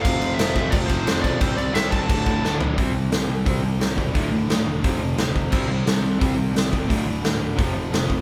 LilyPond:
<<
  \new Staff \with { instrumentName = "Lead electric guitar" } { \time 4/4 \key c \lydian \tempo 4 = 175 f''4 e''4 d''8 c''4 d''8 | c''8 d''8 e''8 a''2 r8 | r1 | r1 |
r1 | r1 | }
  \new Staff \with { instrumentName = "Distorted electric guitar" } { \clef bass \time 4/4 \key c \lydian <f, c f>4 <f, c f>8 <f, c f>8 <f, c f>4 <f, c f>8 <f, c f>8 | <c g c'>4 <c g c'>8 <c g c'>8 <d, a, d>4 <d, a, d>8 <d, a, d>8 | <c g c'>8 <c g>8 <c g>8 <c g>8 <c g c'>8 <c g>8 <c g>8 <c g>8 | <d, a, d>8 <d, a,>8 <d, a,>8 <d, a,>8 <f, c f>8 <f, c>8 <f, c>8 <f, c>8 |
<c g c'>8 <c g>8 <c g>8 <c g>8 <c g c'>8 <c g>8 <c g>8 <c g>8 | <d, a, d>8 <d, a,>8 <d, a,>8 <d, a,>8 <f, c f>8 <f, c>8 <f, c>8 <f, c>8 | }
  \new Staff \with { instrumentName = "Distorted electric guitar" } { \clef bass \time 4/4 \key c \lydian <f, c f>4 <f, c f>8 <f, c f>8 <f, c f>4 <f, c f>8 <f, c f>8 | <c g c'>4 <c g c'>8 <c g c'>8 <d, a, d>4 <d, a, d>8 <d, a, d>8 | <c g c'>8 <c g>8 <c g>8 <c g>8 <c g c'>8 <c g>8 <c g>8 <c g>8 | <d, a, d>8 <d, a,>8 <d, a,>8 <d, a,>8 <f, c f>8 <f, c>8 <f, c>8 <f, c>8 |
<c g c'>8 <c g>8 <c g>8 <c g>8 <c g c'>8 <c g>8 <c g>8 <c g>8 | <d, a, d>8 <d, a,>8 <d, a,>8 <d, a,>8 <f, c f>8 <f, c>8 <f, c>8 <f, c>8 | }
  \new Staff \with { instrumentName = "Distorted electric guitar" } { \clef bass \time 4/4 \key c \lydian <f, c f>4 <f, c f>8 <f, c f>8 <f, c f>4 <f, c f>8 <f, c f>8 | <c g c'>4 <c g c'>8 <c g c'>8 <d, a, d>4 <d, a, d>8 <d, a, d>8 | <c g c'>2.~ <c g c'>8 <c g c'>8 | <d, a, d>2 <f, c f>2 |
<c g c'>2.~ <c g c'>8 <c g c'>8 | <d, a, d>2 <f, c f>2 | }
  \new Staff \with { instrumentName = "Picked electric bass" } { \clef bass \time 4/4 \key c \lydian f,,8 f,,8 f,,8 f,,8 f,,8 f,,8 f,,8 b,,8 | c,8 c,8 c,8 c,8 d,,8 d,,8 d,,8 b,,8 | c,8 c,8 c,8 c,8 c,8 c,8 c,8 e,,8 | d,,8 d,,8 d,,8 e,,8 f,,4 d,,4 |
c,8 c,8 c,8 c,8 c,8 c,8 c,8 e,,8 | d,,8 d,,8 d,,8 d,,8 f,,4 f,,4 | }
  \new DrumStaff \with { instrumentName = "Drums" } \drummode { \time 4/4 <cymc bd>8 cymc8 <cymc sn>8 <cymc bd>8 <cymc bd>8 <cymc bd>8 <cymc sn>8 <cymc bd>8 | <cymc bd>8 cymc8 <cymc sn>8 <cymc bd>8 <cymc bd>8 <cymc bd>8 sn8 tomfh8 | <hho bd>4 <hho sn>4 <hho bd>4 <hho sn>8 bd8 | <hho bd>4 <hho sn>4 <hho bd>4 <hho sn>8 bd8 |
<cymc bd>4 <hho sn>4 <hho bd>4 <hho sn>8 bd8 | <hho bd>4 <hho sn>4 <hho bd>4 <hho sn>8 bd8 | }
>>